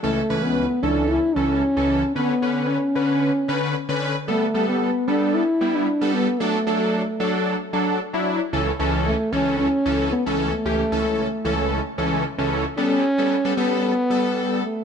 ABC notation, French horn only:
X:1
M:4/4
L:1/16
Q:1/4=113
K:Amix
V:1 name="French horn"
A,3 B,3 D2 E2 C6 | B,4 C8- C2 z2 | A,3 B,3 D2 E3 D3 B,2 | A,8 z8 |
z4 A,2 C2 C4 B,2 A,2- | A,8- A,2 z6 | C6 B,8 A,2 |]